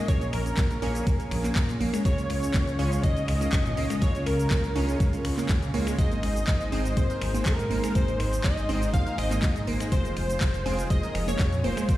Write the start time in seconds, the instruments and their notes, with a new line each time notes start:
Already playing: analog synth pad A#3 C#4
0.08 detuned saw bass A#1, supersaw synth A#2 A#3 G#4 C#5, synth arpeggio sound A#3, analog synth pad A#4, analog synth lead C#5, synth pluck C#5, kick, closed hi-hat, shaker
0.21 closed hi-hat, shaker
0.33 detuned saw bass A#1, synth pluck A#4, analog synth lead A#4, finger snap, open hi-hat
0.46 closed hi-hat, shaker
0.57 detuned saw bass A#1, synth arpeggio sound A#3, kick, clap, closed hi-hat, shaker
0.71 closed hi-hat, shaker
0.82 detuned saw bass A#1, supersaw synth A#2 A#3 G#4 C#5, synth arpeggio sound C#4, open hi-hat
0.95 closed hi-hat, shaker
1.07 detuned saw bass A#1, synth arpeggio sound A#3, kick, closed hi-hat, shaker
1.20 closed hi-hat, shaker
1.31 detuned saw bass A#1, finger snap, open hi-hat
1.44 synth arpeggio sound A#3, clap, closed hi-hat, shaker
1.56 detuned saw bass A#2, kick, clap, closed hi-hat, shaker
1.69 synth arpeggio sound A#2, closed hi-hat, shaker
1.80 detuned saw bass A#1, synth arpeggio sound A#3, open hi-hat
1.93 synth arpeggio sound G#3, finger snap, closed hi-hat, shaker
2.05 detuned saw bass C#2, supersaw synth C#3 G#3 F4 C#5, analog synth pad C#3 F4 G#4, synth arpeggio sound A#3, synth pluck C#5, analog synth lead C#5, kick, closed hi-hat, shaker
2.18 closed hi-hat, shaker
2.30 detuned saw bass C#2, finger snap, open hi-hat
2.43 closed hi-hat, shaker
2.54 detuned saw bass C#2, synth arpeggio sound A#3, kick, clap, closed hi-hat, shaker
2.67 closed hi-hat, shaker
2.79 detuned saw bass C#2, supersaw synth C#3 G#3 F4 C#5, synth arpeggio sound C#4, open hi-hat
2.92 closed hi-hat, shaker
3.03 detuned saw bass C#2, synth arpeggio sound A#3, synth pluck D#5, analog synth lead D#5, kick, closed hi-hat, shaker
3.17 closed hi-hat, shaker
3.28 detuned saw bass C#2, finger snap, open hi-hat
3.41 synth arpeggio sound A#3, closed hi-hat, shaker
3.52 detuned saw bass G#1, kick, clap, closed hi-hat, shaker
3.66 synth arpeggio sound A#2, closed hi-hat, shaker
3.77 detuned saw bass C#2, synth arpeggio sound A#3, open hi-hat
3.90 synth arpeggio sound G#3, finger snap, closed hi-hat, shaker
4.01 detuned saw bass C#2, supersaw synth C#3 G#3 F4 C#5, synth arpeggio sound A#3, synth pluck C#5, analog synth lead C#5, kick, closed hi-hat, shaker
4.15 closed hi-hat, shaker
4.26 detuned saw bass C#2, synth pluck A#4, analog synth lead A#4, finger snap, open hi-hat
4.39 closed hi-hat, shaker
4.51 detuned saw bass C#2, synth arpeggio sound A#3, kick, clap, closed hi-hat, shaker
4.64 closed hi-hat, shaker
4.76 detuned saw bass C#2, supersaw synth C#3 G#3 F4 C#5, synth arpeggio sound C#4, open hi-hat
4.89 closed hi-hat, shaker
5.00 detuned saw bass C#2, synth arpeggio sound A#3, kick, closed hi-hat, shaker
5.13 closed hi-hat, shaker
5.25 detuned saw bass C#2, finger snap, open hi-hat
5.37 synth arpeggio sound A#3, clap, closed hi-hat, shaker
5.49 detuned saw bass C#2, kick, clap, closed hi-hat, shaker
5.62 synth arpeggio sound A#2, closed hi-hat, shaker
5.74 detuned saw bass C#2, supersaw synth G#2 G#3 F4 C#5, synth arpeggio sound A#3, open hi-hat
5.87 synth arpeggio sound G#3, finger snap, closed hi-hat, shaker
5.98 detuned saw bass G#1, supersaw synth G#2 G#3 D#4 C5, synth arpeggio sound A#3, analog synth pad C4 D#4, synth pluck D#5, analog synth lead D#5, kick, closed hi-hat, shaker
6.12 closed hi-hat, shaker
6.23 detuned saw bass G#1, finger snap, open hi-hat
6.36 closed hi-hat, shaker
6.47 detuned saw bass G#1, synth arpeggio sound A#3, kick, clap, closed hi-hat, shaker
6.61 closed hi-hat, shaker
6.72 detuned saw bass G#1, supersaw synth G#2 G#3 D#4 C5, synth arpeggio sound C4, open hi-hat
6.85 closed hi-hat, shaker
6.97 detuned saw bass G#1, synth arpeggio sound A#3, synth pluck C5, analog synth lead C5, kick, closed hi-hat, shaker
7.10 synth arpeggio sound A#4, closed hi-hat, shaker
7.21 detuned saw bass G#1, finger snap, open hi-hat
7.34 synth arpeggio sound A#3, closed hi-hat, shaker
7.46 detuned saw bass G#2, synth pluck A#4, analog synth lead A#4, kick, clap, closed hi-hat, shaker
7.59 synth arpeggio sound A#2, closed hi-hat, shaker
7.71 detuned saw bass G#1, synth arpeggio sound A#3, open hi-hat
7.84 synth arpeggio sound G#3, finger snap, closed hi-hat, shaker
7.95 detuned saw bass G#1, supersaw synth G#2 G#3 D#4 C5, synth arpeggio sound A#3, synth pluck C5, analog synth lead C5, kick, closed hi-hat, shaker
8.08 closed hi-hat, shaker
8.20 detuned saw bass G#1, finger snap, open hi-hat
8.33 closed hi-hat, shaker
8.44 detuned saw bass G#1, synth arpeggio sound A#3, synth pluck D#5, analog synth lead D#5, kick, clap, closed hi-hat, shaker
8.57 closed hi-hat, shaker
8.69 detuned saw bass G#1, supersaw synth G#2 G#3 D#4 C5, synth arpeggio sound C4, open hi-hat
8.82 closed hi-hat, shaker
8.94 detuned saw bass G#1, synth arpeggio sound A#3, synth pluck F5, analog synth lead F5, kick, closed hi-hat, shaker
9.06 synth arpeggio sound A#4, closed hi-hat, shaker
9.18 detuned saw bass G#1, synth pluck D#5, analog synth lead D#5, finger snap, open hi-hat
9.31 synth arpeggio sound A#3, clap, closed hi-hat, shaker
9.43 detuned saw bass G#2, kick, clap, closed hi-hat, shaker
9.56 synth arpeggio sound A#2, closed hi-hat, shaker
9.67 detuned saw bass G#1, synth arpeggio sound A#3, open hi-hat
9.80 synth arpeggio sound G#3, finger snap, closed hi-hat, shaker
9.92 detuned saw bass F1, analog synth pad F3 F4, supersaw synth G#3 F4 C5, synth arpeggio sound A#3, synth pluck C5, analog synth lead C5, kick, closed hi-hat, shaker
10.05 closed hi-hat, shaker
10.17 detuned saw bass F1, finger snap, open hi-hat
10.30 closed hi-hat, shaker
10.41 detuned saw bass F1, synth arpeggio sound A#3, kick, clap, closed hi-hat, shaker
10.54 closed hi-hat, shaker
10.66 detuned saw bass F1, supersaw synth G#3 F4 G#4, synth arpeggio sound C4, open hi-hat
10.79 closed hi-hat, shaker
10.90 detuned saw bass F1, synth arpeggio sound A#3, synth pluck D#5, analog synth lead D#5, kick, closed hi-hat, shaker
11.03 synth arpeggio sound A#4, closed hi-hat, shaker
11.15 detuned saw bass F1, finger snap, open hi-hat
11.28 synth arpeggio sound A#3, synth pluck C#5, analog synth lead C#5, closed hi-hat, shaker
11.39 detuned saw bass F2, kick, clap, closed hi-hat, shaker
11.52 synth arpeggio sound A#2, closed hi-hat, shaker
11.64 detuned saw bass F1, synth arpeggio sound A#3, analog synth lead C5, synth pluck C5, open hi-hat
11.77 synth arpeggio sound G#3, finger snap, closed hi-hat, shaker
11.89 detuned saw bass F1, supersaw synth G#3 F4 C5, synth arpeggio sound A#3, analog synth pad A#4, kick, closed hi-hat, shaker